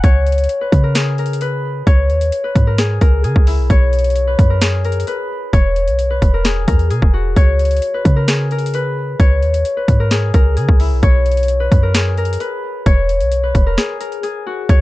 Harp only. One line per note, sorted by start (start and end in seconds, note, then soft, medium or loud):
0.00 1.86 C#5 loud
0.00 1.41 F#5 medium
0.00 1.08 G#5 medium
0.00 0.67 A#5 medium
0.61 0.89 B4 medium
0.83 1.18 A#4 medium
0.95 2.78 G#4 medium
1.19 1.47 A#4 medium
1.41 2.44 B4 medium
1.87 3.70 C#5 loud
2.44 2.73 B4 medium
2.67 3.01 A#4 medium
2.78 3.23 G#4 medium
3.01 4.33 A#4 medium
3.24 4.61 G#4 medium
3.47 6.08 E4 medium
3.70 5.53 C#5 loud
4.27 4.56 B4 medium
4.50 4.84 A#4 medium
4.61 6.44 G#4 medium
4.85 5.13 A#4 medium
5.07 6.10 B4 medium
5.53 7.36 C#5 loud
6.10 6.40 B4 medium
6.34 6.67 A#4 medium
6.45 6.90 G#4 medium
6.68 8.00 A#4 medium
6.90 8.28 G#4 medium
7.13 9.57 F#4 medium
7.37 9.19 C#5 loud
7.94 8.22 B4 medium
8.16 8.51 A#4 medium
8.28 10.11 G#4 medium
8.52 8.80 A#4 medium
8.74 9.76 B4 medium
9.20 11.03 C#5 loud
9.77 10.06 B4 medium
10.00 10.34 A#4 medium
10.11 10.56 G#4 medium
10.34 11.66 A#4 medium
10.57 11.94 G#4 medium
10.80 13.41 E4 medium
11.03 12.86 C#5 loud
11.60 11.89 B4 medium
11.83 12.17 A#4 medium
11.94 13.77 G#4 medium
12.18 12.46 A#4 medium
12.40 13.43 B4 medium
12.86 14.69 C#5 loud
13.43 13.72 B4 medium
13.66 14.00 A#4 medium
13.77 14.23 G#4 medium
14.00 14.81 A#4 medium
14.23 14.81 G#4 medium
14.46 14.81 F#4 medium
14.70 14.81 C#5 loud